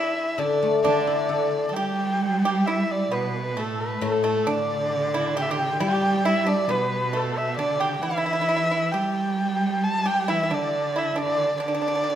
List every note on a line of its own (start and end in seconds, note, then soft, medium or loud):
0.00 1.29 E3 medium
0.00 0.35 E4 medium
0.00 0.40 E5 medium
0.38 3.12 D3 medium
0.38 0.83 D4 medium
0.38 0.82 D5 medium
0.63 2.44 A3 soft
0.82 1.71 D3 medium
0.82 2.67 D4 soft
0.82 1.64 D4 medium
0.82 1.74 D5 medium
1.07 2.90 E4 soft
1.29 3.12 A4 soft
1.69 1.76 A4 soft
1.69 2.67 G5 medium
1.74 3.08 G3 medium
1.74 2.40 G4 medium
2.45 2.66 G4 medium
2.66 3.10 E4 medium
2.66 2.93 E5 medium
2.91 3.15 D5 medium
3.12 3.59 B2 medium
3.12 3.40 B3 medium
3.12 3.61 B4 medium
3.40 3.54 A3 medium
3.57 4.01 A2 medium
3.57 3.99 A3 medium
3.57 3.82 A4 medium
3.80 4.06 B4 medium
4.01 6.68 A2 medium
4.01 4.48 A2 medium
4.01 4.23 A3 medium
4.01 4.25 A4 medium
4.24 4.46 A3 medium
4.24 4.50 A4 medium
4.47 5.82 D3 medium
4.47 5.11 D4 medium
4.47 5.38 D5 medium
5.14 5.35 E4 medium
5.37 5.50 G4 medium
5.37 5.43 G5 medium
5.42 5.52 E5 medium
5.51 5.79 G4 medium
5.51 5.81 G5 medium
5.80 6.70 G3 medium
5.80 8.47 G3 medium
5.80 6.21 G4 medium
5.80 6.27 G5 medium
6.25 6.46 E4 medium
6.25 6.50 E5 medium
6.47 6.67 D4 medium
6.47 6.72 D5 medium
6.68 7.59 B2 medium
6.68 7.10 B3 medium
6.68 7.18 B4 medium
7.13 7.54 A3 medium
7.13 7.39 A4 medium
7.38 7.57 E5 medium
7.57 8.03 D3 medium
7.57 7.79 D4 medium
7.57 7.82 D5 medium
7.80 8.01 G4 medium
7.80 8.03 G5 medium
8.01 8.95 E3 medium
8.01 8.09 E4 medium
8.01 8.93 E5 medium
8.11 8.16 E4 soft
8.18 8.24 E4 medium
8.26 8.32 E4 medium
8.33 8.39 E4 medium
8.41 8.47 E4 medium
8.49 8.55 E4 medium
8.57 8.63 E4 medium
8.71 8.92 E4 medium
8.91 10.31 G3 medium
8.91 10.03 G4 medium
8.91 9.85 G5 medium
9.84 10.08 A5 medium
10.06 10.27 G4 medium
10.06 10.31 G5 medium
10.28 10.52 E3 medium
10.28 10.42 E4 medium
10.28 10.55 E5 medium
10.43 10.51 E4 soft
10.51 11.16 D3 medium
10.51 10.92 D4 medium
10.51 10.99 D5 medium
10.96 11.16 E4 medium
10.96 11.20 E5 medium
11.16 11.58 D3 medium
11.16 11.58 D4 medium
11.16 11.60 D5 medium
11.60 12.15 D3 medium
11.60 11.67 D4 medium
11.60 12.15 D5 loud
11.68 11.73 D4 medium
11.75 11.80 D4 medium
11.82 11.87 D4 soft
11.88 11.94 D4 medium
11.95 12.02 D4 soft
12.04 12.09 D4 soft
12.10 12.15 D4 soft